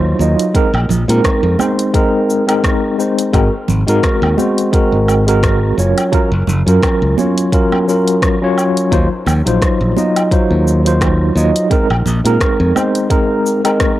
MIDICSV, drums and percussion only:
0, 0, Header, 1, 2, 480
1, 0, Start_track
1, 0, Tempo, 697674
1, 378, Time_signature, 4, 2, 24, 8
1, 9630, End_track
2, 0, Start_track
2, 0, Title_t, "Drums"
2, 142, Note_on_c, 9, 69, 77
2, 211, Note_off_c, 9, 69, 0
2, 271, Note_on_c, 9, 42, 62
2, 276, Note_on_c, 9, 69, 47
2, 340, Note_off_c, 9, 42, 0
2, 345, Note_off_c, 9, 69, 0
2, 375, Note_on_c, 9, 36, 118
2, 378, Note_on_c, 9, 42, 41
2, 383, Note_on_c, 9, 69, 34
2, 444, Note_off_c, 9, 36, 0
2, 447, Note_off_c, 9, 42, 0
2, 452, Note_off_c, 9, 69, 0
2, 513, Note_on_c, 9, 77, 74
2, 582, Note_off_c, 9, 77, 0
2, 621, Note_on_c, 9, 64, 92
2, 623, Note_on_c, 9, 69, 83
2, 690, Note_off_c, 9, 64, 0
2, 692, Note_off_c, 9, 69, 0
2, 752, Note_on_c, 9, 42, 55
2, 757, Note_on_c, 9, 69, 45
2, 821, Note_off_c, 9, 42, 0
2, 826, Note_off_c, 9, 69, 0
2, 855, Note_on_c, 9, 36, 107
2, 858, Note_on_c, 9, 37, 107
2, 858, Note_on_c, 9, 42, 43
2, 863, Note_on_c, 9, 69, 36
2, 924, Note_off_c, 9, 36, 0
2, 927, Note_off_c, 9, 37, 0
2, 927, Note_off_c, 9, 42, 0
2, 932, Note_off_c, 9, 69, 0
2, 1094, Note_on_c, 9, 63, 92
2, 1098, Note_on_c, 9, 77, 78
2, 1103, Note_on_c, 9, 69, 82
2, 1163, Note_off_c, 9, 63, 0
2, 1167, Note_off_c, 9, 77, 0
2, 1172, Note_off_c, 9, 69, 0
2, 1231, Note_on_c, 9, 42, 60
2, 1236, Note_on_c, 9, 69, 49
2, 1300, Note_off_c, 9, 42, 0
2, 1305, Note_off_c, 9, 69, 0
2, 1335, Note_on_c, 9, 36, 108
2, 1337, Note_on_c, 9, 42, 46
2, 1342, Note_on_c, 9, 69, 34
2, 1404, Note_off_c, 9, 36, 0
2, 1406, Note_off_c, 9, 42, 0
2, 1410, Note_off_c, 9, 69, 0
2, 1582, Note_on_c, 9, 69, 85
2, 1651, Note_off_c, 9, 69, 0
2, 1711, Note_on_c, 9, 42, 59
2, 1711, Note_on_c, 9, 77, 80
2, 1716, Note_on_c, 9, 69, 49
2, 1780, Note_off_c, 9, 42, 0
2, 1780, Note_off_c, 9, 77, 0
2, 1785, Note_off_c, 9, 69, 0
2, 1815, Note_on_c, 9, 36, 106
2, 1819, Note_on_c, 9, 37, 105
2, 1819, Note_on_c, 9, 42, 44
2, 1824, Note_on_c, 9, 69, 36
2, 1884, Note_off_c, 9, 36, 0
2, 1888, Note_off_c, 9, 37, 0
2, 1888, Note_off_c, 9, 42, 0
2, 1893, Note_off_c, 9, 69, 0
2, 2063, Note_on_c, 9, 69, 85
2, 2132, Note_off_c, 9, 69, 0
2, 2191, Note_on_c, 9, 42, 62
2, 2197, Note_on_c, 9, 69, 50
2, 2260, Note_off_c, 9, 42, 0
2, 2265, Note_off_c, 9, 69, 0
2, 2294, Note_on_c, 9, 36, 113
2, 2298, Note_on_c, 9, 42, 41
2, 2298, Note_on_c, 9, 77, 73
2, 2303, Note_on_c, 9, 69, 35
2, 2363, Note_off_c, 9, 36, 0
2, 2367, Note_off_c, 9, 42, 0
2, 2367, Note_off_c, 9, 77, 0
2, 2372, Note_off_c, 9, 69, 0
2, 2532, Note_on_c, 9, 64, 82
2, 2542, Note_on_c, 9, 69, 85
2, 2601, Note_off_c, 9, 64, 0
2, 2611, Note_off_c, 9, 69, 0
2, 2671, Note_on_c, 9, 42, 52
2, 2676, Note_on_c, 9, 69, 46
2, 2740, Note_off_c, 9, 42, 0
2, 2745, Note_off_c, 9, 69, 0
2, 2774, Note_on_c, 9, 36, 111
2, 2777, Note_on_c, 9, 37, 108
2, 2777, Note_on_c, 9, 42, 41
2, 2782, Note_on_c, 9, 69, 35
2, 2843, Note_off_c, 9, 36, 0
2, 2846, Note_off_c, 9, 37, 0
2, 2846, Note_off_c, 9, 42, 0
2, 2851, Note_off_c, 9, 69, 0
2, 2911, Note_on_c, 9, 77, 74
2, 2980, Note_off_c, 9, 77, 0
2, 3013, Note_on_c, 9, 63, 96
2, 3021, Note_on_c, 9, 69, 85
2, 3082, Note_off_c, 9, 63, 0
2, 3090, Note_off_c, 9, 69, 0
2, 3151, Note_on_c, 9, 42, 56
2, 3156, Note_on_c, 9, 69, 48
2, 3220, Note_off_c, 9, 42, 0
2, 3225, Note_off_c, 9, 69, 0
2, 3254, Note_on_c, 9, 36, 119
2, 3258, Note_on_c, 9, 42, 45
2, 3263, Note_on_c, 9, 69, 35
2, 3323, Note_off_c, 9, 36, 0
2, 3327, Note_off_c, 9, 42, 0
2, 3332, Note_off_c, 9, 69, 0
2, 3498, Note_on_c, 9, 77, 82
2, 3503, Note_on_c, 9, 69, 83
2, 3567, Note_off_c, 9, 77, 0
2, 3572, Note_off_c, 9, 69, 0
2, 3633, Note_on_c, 9, 42, 53
2, 3638, Note_on_c, 9, 69, 50
2, 3701, Note_off_c, 9, 42, 0
2, 3706, Note_off_c, 9, 69, 0
2, 3735, Note_on_c, 9, 36, 111
2, 3739, Note_on_c, 9, 37, 110
2, 3739, Note_on_c, 9, 42, 44
2, 3744, Note_on_c, 9, 69, 37
2, 3804, Note_off_c, 9, 36, 0
2, 3808, Note_off_c, 9, 37, 0
2, 3808, Note_off_c, 9, 42, 0
2, 3813, Note_off_c, 9, 69, 0
2, 3982, Note_on_c, 9, 69, 84
2, 4051, Note_off_c, 9, 69, 0
2, 4112, Note_on_c, 9, 42, 58
2, 4112, Note_on_c, 9, 77, 81
2, 4117, Note_on_c, 9, 69, 51
2, 4181, Note_off_c, 9, 42, 0
2, 4181, Note_off_c, 9, 77, 0
2, 4186, Note_off_c, 9, 69, 0
2, 4216, Note_on_c, 9, 36, 110
2, 4218, Note_on_c, 9, 42, 42
2, 4223, Note_on_c, 9, 69, 33
2, 4284, Note_off_c, 9, 36, 0
2, 4287, Note_off_c, 9, 42, 0
2, 4292, Note_off_c, 9, 69, 0
2, 4454, Note_on_c, 9, 64, 81
2, 4465, Note_on_c, 9, 69, 85
2, 4523, Note_off_c, 9, 64, 0
2, 4533, Note_off_c, 9, 69, 0
2, 4594, Note_on_c, 9, 42, 55
2, 4599, Note_on_c, 9, 69, 46
2, 4663, Note_off_c, 9, 42, 0
2, 4668, Note_off_c, 9, 69, 0
2, 4696, Note_on_c, 9, 36, 112
2, 4701, Note_on_c, 9, 37, 102
2, 4701, Note_on_c, 9, 42, 41
2, 4701, Note_on_c, 9, 77, 71
2, 4706, Note_on_c, 9, 69, 34
2, 4765, Note_off_c, 9, 36, 0
2, 4769, Note_off_c, 9, 37, 0
2, 4769, Note_off_c, 9, 42, 0
2, 4769, Note_off_c, 9, 77, 0
2, 4774, Note_off_c, 9, 69, 0
2, 4939, Note_on_c, 9, 63, 98
2, 4945, Note_on_c, 9, 69, 77
2, 5008, Note_off_c, 9, 63, 0
2, 5014, Note_off_c, 9, 69, 0
2, 5074, Note_on_c, 9, 42, 57
2, 5079, Note_on_c, 9, 69, 48
2, 5143, Note_off_c, 9, 42, 0
2, 5148, Note_off_c, 9, 69, 0
2, 5176, Note_on_c, 9, 36, 111
2, 5180, Note_on_c, 9, 42, 41
2, 5185, Note_on_c, 9, 69, 35
2, 5245, Note_off_c, 9, 36, 0
2, 5249, Note_off_c, 9, 42, 0
2, 5254, Note_off_c, 9, 69, 0
2, 5313, Note_on_c, 9, 63, 65
2, 5313, Note_on_c, 9, 77, 77
2, 5381, Note_off_c, 9, 63, 0
2, 5382, Note_off_c, 9, 77, 0
2, 5426, Note_on_c, 9, 69, 85
2, 5495, Note_off_c, 9, 69, 0
2, 5555, Note_on_c, 9, 42, 57
2, 5560, Note_on_c, 9, 69, 49
2, 5624, Note_off_c, 9, 42, 0
2, 5629, Note_off_c, 9, 69, 0
2, 5657, Note_on_c, 9, 36, 109
2, 5660, Note_on_c, 9, 37, 100
2, 5660, Note_on_c, 9, 42, 43
2, 5665, Note_on_c, 9, 69, 35
2, 5725, Note_off_c, 9, 36, 0
2, 5729, Note_off_c, 9, 37, 0
2, 5729, Note_off_c, 9, 42, 0
2, 5734, Note_off_c, 9, 69, 0
2, 5901, Note_on_c, 9, 77, 73
2, 5906, Note_on_c, 9, 69, 87
2, 5969, Note_off_c, 9, 77, 0
2, 5974, Note_off_c, 9, 69, 0
2, 6034, Note_on_c, 9, 42, 58
2, 6039, Note_on_c, 9, 69, 50
2, 6103, Note_off_c, 9, 42, 0
2, 6108, Note_off_c, 9, 69, 0
2, 6137, Note_on_c, 9, 36, 115
2, 6142, Note_on_c, 9, 42, 40
2, 6147, Note_on_c, 9, 69, 31
2, 6205, Note_off_c, 9, 36, 0
2, 6210, Note_off_c, 9, 42, 0
2, 6215, Note_off_c, 9, 69, 0
2, 6374, Note_on_c, 9, 64, 75
2, 6380, Note_on_c, 9, 77, 80
2, 6385, Note_on_c, 9, 69, 84
2, 6443, Note_off_c, 9, 64, 0
2, 6449, Note_off_c, 9, 77, 0
2, 6454, Note_off_c, 9, 69, 0
2, 6514, Note_on_c, 9, 42, 53
2, 6519, Note_on_c, 9, 69, 45
2, 6583, Note_off_c, 9, 42, 0
2, 6588, Note_off_c, 9, 69, 0
2, 6616, Note_on_c, 9, 36, 99
2, 6620, Note_on_c, 9, 37, 93
2, 6620, Note_on_c, 9, 42, 42
2, 6625, Note_on_c, 9, 69, 34
2, 6685, Note_off_c, 9, 36, 0
2, 6689, Note_off_c, 9, 37, 0
2, 6689, Note_off_c, 9, 42, 0
2, 6694, Note_off_c, 9, 69, 0
2, 6857, Note_on_c, 9, 63, 94
2, 6864, Note_on_c, 9, 69, 76
2, 6925, Note_off_c, 9, 63, 0
2, 6933, Note_off_c, 9, 69, 0
2, 6992, Note_on_c, 9, 42, 54
2, 6992, Note_on_c, 9, 77, 78
2, 6998, Note_on_c, 9, 69, 45
2, 7061, Note_off_c, 9, 42, 0
2, 7061, Note_off_c, 9, 77, 0
2, 7066, Note_off_c, 9, 69, 0
2, 7096, Note_on_c, 9, 36, 101
2, 7099, Note_on_c, 9, 42, 44
2, 7104, Note_on_c, 9, 69, 34
2, 7165, Note_off_c, 9, 36, 0
2, 7168, Note_off_c, 9, 42, 0
2, 7173, Note_off_c, 9, 69, 0
2, 7344, Note_on_c, 9, 69, 82
2, 7412, Note_off_c, 9, 69, 0
2, 7473, Note_on_c, 9, 42, 56
2, 7478, Note_on_c, 9, 69, 45
2, 7542, Note_off_c, 9, 42, 0
2, 7547, Note_off_c, 9, 69, 0
2, 7575, Note_on_c, 9, 36, 107
2, 7579, Note_on_c, 9, 37, 93
2, 7579, Note_on_c, 9, 42, 42
2, 7579, Note_on_c, 9, 77, 77
2, 7584, Note_on_c, 9, 69, 32
2, 7644, Note_off_c, 9, 36, 0
2, 7648, Note_off_c, 9, 37, 0
2, 7648, Note_off_c, 9, 42, 0
2, 7648, Note_off_c, 9, 77, 0
2, 7653, Note_off_c, 9, 69, 0
2, 7823, Note_on_c, 9, 69, 78
2, 7892, Note_off_c, 9, 69, 0
2, 7952, Note_on_c, 9, 42, 58
2, 7957, Note_on_c, 9, 69, 49
2, 8021, Note_off_c, 9, 42, 0
2, 8026, Note_off_c, 9, 69, 0
2, 8055, Note_on_c, 9, 36, 102
2, 8057, Note_on_c, 9, 42, 43
2, 8062, Note_on_c, 9, 69, 31
2, 8124, Note_off_c, 9, 36, 0
2, 8126, Note_off_c, 9, 42, 0
2, 8131, Note_off_c, 9, 69, 0
2, 8191, Note_on_c, 9, 77, 79
2, 8260, Note_off_c, 9, 77, 0
2, 8295, Note_on_c, 9, 64, 74
2, 8302, Note_on_c, 9, 69, 80
2, 8364, Note_off_c, 9, 64, 0
2, 8371, Note_off_c, 9, 69, 0
2, 8431, Note_on_c, 9, 42, 57
2, 8436, Note_on_c, 9, 69, 43
2, 8500, Note_off_c, 9, 42, 0
2, 8505, Note_off_c, 9, 69, 0
2, 8535, Note_on_c, 9, 36, 96
2, 8538, Note_on_c, 9, 37, 96
2, 8538, Note_on_c, 9, 42, 44
2, 8543, Note_on_c, 9, 69, 32
2, 8604, Note_off_c, 9, 36, 0
2, 8607, Note_off_c, 9, 37, 0
2, 8607, Note_off_c, 9, 42, 0
2, 8612, Note_off_c, 9, 69, 0
2, 8778, Note_on_c, 9, 63, 82
2, 8778, Note_on_c, 9, 77, 82
2, 8783, Note_on_c, 9, 69, 76
2, 8847, Note_off_c, 9, 63, 0
2, 8847, Note_off_c, 9, 77, 0
2, 8852, Note_off_c, 9, 69, 0
2, 8910, Note_on_c, 9, 42, 56
2, 8915, Note_on_c, 9, 69, 44
2, 8979, Note_off_c, 9, 42, 0
2, 8984, Note_off_c, 9, 69, 0
2, 9014, Note_on_c, 9, 36, 103
2, 9016, Note_on_c, 9, 42, 47
2, 9021, Note_on_c, 9, 69, 32
2, 9083, Note_off_c, 9, 36, 0
2, 9085, Note_off_c, 9, 42, 0
2, 9090, Note_off_c, 9, 69, 0
2, 9261, Note_on_c, 9, 69, 83
2, 9329, Note_off_c, 9, 69, 0
2, 9390, Note_on_c, 9, 42, 59
2, 9390, Note_on_c, 9, 77, 88
2, 9395, Note_on_c, 9, 69, 42
2, 9459, Note_off_c, 9, 42, 0
2, 9459, Note_off_c, 9, 77, 0
2, 9464, Note_off_c, 9, 69, 0
2, 9494, Note_on_c, 9, 36, 94
2, 9494, Note_on_c, 9, 37, 96
2, 9494, Note_on_c, 9, 42, 43
2, 9499, Note_on_c, 9, 69, 32
2, 9563, Note_off_c, 9, 36, 0
2, 9563, Note_off_c, 9, 37, 0
2, 9563, Note_off_c, 9, 42, 0
2, 9568, Note_off_c, 9, 69, 0
2, 9630, End_track
0, 0, End_of_file